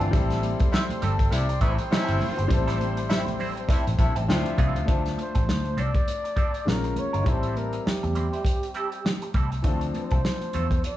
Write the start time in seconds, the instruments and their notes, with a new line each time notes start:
Already playing: horn section D3 C4 F4, grand piano E3 C4 D4 A4, string section A4 C6
0.00 clean electric guitar E3 C4 D4 A4, closed hi-hat
0.11 fingered electric bass A1, grand piano G3 C4 E4, clean electric guitar G3 C4 E4 A4, string section G5, kick, closed hi-hat
0.16 grand piano A4
0.30 snare, closed hi-hat
0.43 closed hi-hat, high conga
0.60 muted clean electric guitar stroke, kick, closed hi-hat
0.72 horn section C3 A3 E4, flugelhorn C5, muted clean electric guitar stroke, snare, muted conga
0.90 closed hi-hat, high conga, low conga
1.02 fingered electric bass G1, clean electric guitar G3 C4 E4 A4, flugelhorn A4, closed hi-hat, low conga
1.19 muted clean electric guitar stroke, kick, closed hi-hat
1.31 fingered electric bass C2, horn section C3 A3 E4, flugelhorn D5, muted clean electric guitar stroke, closed hi-hat, muted conga
1.49 muted clean electric guitar stroke, closed hi-hat
1.61 fingered electric bass A1, horn section C3 A3 E4, clean electric guitar G3 C4 E4 A4, flugelhorn C5, kick, closed hi-hat, muted conga
1.78 muted clean electric guitar stroke, closed hi-hat
1.91 horn section C3 A3 E4, clean electric guitar F#3 B3 D#4 G#4, muted fingered electric bass stroke, snare, high conga
2.03 clean electric guitar G3 C4 E4 A4
2.08 fingered electric bass G1, closed hi-hat
2.20 muted clean electric guitar stroke, open hi-hat, muted conga, high conga, low conga
2.38 fingered electric bass G1, muted clean electric guitar stroke, closed hi-hat
2.48 fingered electric bass A1, grand piano G3 C4 E4, muted clean electric guitar stroke, kick, closed hi-hat
2.53 grand piano A4
2.67 clean electric guitar G3 C4 E4 A4, snare, closed hi-hat
2.80 muted clean electric guitar stroke, closed hi-hat, muted conga, high conga
2.97 muted clean electric guitar stroke, closed hi-hat
3.10 horn section C3 A3 E4, clean electric guitar G3 C4 E4 C5, snare, muted conga
3.26 muted clean electric guitar stroke, closed hi-hat, high conga, low conga
3.39 clean electric guitar G3 C4 E4 C5, open hi-hat, muted conga, low conga
3.56 muted clean electric guitar stroke, closed hi-hat
3.69 horn section C3 A3 E4, clean electric guitar G3 C4 E4 A4, kick, closed hi-hat, muted conga
3.87 fingered electric bass A1, closed hi-hat
3.99 fingered electric bass A#1, horn section C3 A3 E4, grand piano A5, muted clean electric guitar stroke, kick, closed hi-hat, muted conga
4.16 fingered electric bass A1, clean electric guitar G3 C4 E4 A4, closed hi-hat
4.28 fingered electric bass D2, horn section C3 A3 F4, grand piano F3 D4 E4 C5 G5, string section F3 E5, snare, muted conga, high conga
4.46 muted clean electric guitar stroke, closed hi-hat
4.58 fingered electric bass C2, clean electric guitar F3 C4 E4 A4, grand piano F5, kick, closed hi-hat, muted conga, high conga, low conga
4.75 fingered electric bass D2, muted clean electric guitar stroke, closed hi-hat
4.85 fingered electric bass D2, clean electric guitar F3 C4 D4, grand piano A3 D4 F4, kick, closed hi-hat
4.90 clean electric guitar A4, grand piano C5
5.06 snare, closed hi-hat
5.17 muted clean electric guitar stroke, closed hi-hat, high conga
5.22 flugelhorn C5
5.35 fingered electric bass A1, clean electric guitar F3 C4 D4 A4, kick, closed hi-hat
5.47 fingered electric bass D2, muted clean electric guitar stroke, snare, muted conga
5.64 closed hi-hat, high conga
5.77 fingered electric bass C2, clean electric guitar F3 C4 D4 A4, flugelhorn D5, closed hi-hat, muted conga, low conga
5.95 muted clean electric guitar stroke, kick, closed hi-hat
6.07 closed hi-hat, muted conga
6.24 muted clean electric guitar stroke, closed hi-hat
6.36 clean electric guitar F3 C4 D4 A4, kick, closed hi-hat
6.54 muted clean electric guitar stroke, closed hi-hat
6.65 fingered electric bass A#1, grand piano G#3 C#4 F4 A#4, flugelhorn A#4, muted clean electric guitar stroke, snare, muted conga, high conga
6.84 muted clean electric guitar stroke, closed hi-hat
6.96 flugelhorn C#5, closed hi-hat, muted conga, high conga, low conga
7.13 fingered electric bass G1, clean electric guitar G#3 C#4 F4 A#4, closed hi-hat
7.24 fingered electric bass A1, grand piano G3 C4 E4, clean electric guitar G3 C4 E4 A4, kick, closed hi-hat, muted conga
7.29 grand piano A4, flugelhorn C5
7.43 closed hi-hat
7.56 flugelhorn A#4, closed hi-hat, muted conga, high conga
7.73 muted clean electric guitar stroke, closed hi-hat
7.86 flugelhorn G4, muted clean electric guitar stroke, muted fingered electric bass stroke, snare, muted conga
8.03 fingered electric bass E2, muted clean electric guitar stroke, closed hi-hat, high conga
8.15 clean electric guitar G3 C4 E4 C5, closed hi-hat, low conga
8.33 clean electric guitar G3 C4 E4 C5, closed hi-hat
8.45 muted clean electric guitar stroke, kick, closed hi-hat
8.63 closed hi-hat
8.74 clean electric guitar G3 C4 E4 A4, closed hi-hat
8.92 muted clean electric guitar stroke, closed hi-hat
9.05 muted clean electric guitar stroke, snare, high conga
9.22 muted clean electric guitar stroke, closed hi-hat
9.34 fingered electric bass C2, clean electric guitar G3 C4 E4 A4, kick, closed hi-hat, muted conga, high conga, low conga
9.52 muted clean electric guitar stroke, closed hi-hat
9.62 fingered electric bass D2, grand piano E3 C4 D4, clean electric guitar A3 C4 F4, kick, closed hi-hat, muted conga
9.66 grand piano F3 A4, clean electric guitar A4
9.81 muted clean electric guitar stroke, closed hi-hat
9.94 flugelhorn C5, muted clean electric guitar stroke, closed hi-hat, high conga
10.11 fingered electric bass C2, clean electric guitar A3 C4 F4 A4, kick, closed hi-hat
10.24 muted clean electric guitar stroke, snare, muted conga
10.41 closed hi-hat, high conga
10.53 fingered electric bass E2, clean electric guitar A3 C4 F4 A4, closed hi-hat, muted conga, low conga
10.71 muted clean electric guitar stroke, kick, closed hi-hat
10.84 flugelhorn D5, closed hi-hat, muted conga